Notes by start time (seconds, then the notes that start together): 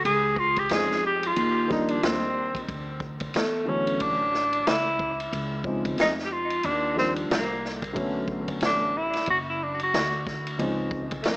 0.05 C#2 G#4, ride
0.36 F4, kick
0.56 G4, kick, ride
0.69 F2 C#3 F3 G#3 C4 D#4 G#4, snare, hi-hat pedal, ride
0.91 snare
1.06 G4
1.23 F4, ride
1.36 D#2, ride
1.67 D#3 F3 G3 A#3 D4, kick, snare
1.72 D#4
1.88 D4, ride
2.03 D#2 C4, snare, hi-hat pedal, ride
2.55 kick, ride
2.69 D2, kick, ride
3.00 kick
3.20 kick, ride
3.34 E2 A3, snare, hi-hat pedal, ride
3.65 D3 E3 F#3 A3 C#4
3.87 ride
4.00 A1 D4, kick, ride
4.34 snare
4.53 ride
4.67 C#2 E4, snare, hi-hat pedal, ride
4.99 kick
5.20 ride
5.32 C#2, ride
5.64 C#3 F3 G#3 C4 D#4, kick
5.85 kick, ride
5.98 F2 D#4, snare, hi-hat pedal, ride
6.19 snare
6.25 G4
6.32 F4
6.50 ride
6.63 D#2 D4, ride
6.94 D#3 F3 G3 A#3 D4, snare
6.98 C4
7.16 ride
7.30 C2 A#3, snare, hi-hat pedal, ride
7.65 snare
7.82 kick, ride
7.93 B1 D3 F#3 A3 B3 C#4, kick, ride
8.28 kick
8.48 kick, ride
8.61 A1, snare, hi-hat pedal, ride
8.66 D4
8.97 E4
9.13 muted upright bass stroke, snare, ride
9.26 F#1, kick, ride
9.30 F#4
9.49 E4
9.63 D4
9.79 F#4, ride
9.94 D2, snare, hi-hat pedal, ride
10.27 kick, snare
10.47 ride
10.58 C#2 C#3 F3 G#3 C4 D#4, ride
10.91 kick
11.11 kick, ride
11.22 F2 A3, snare, hi-hat pedal, ride
11.28 A#3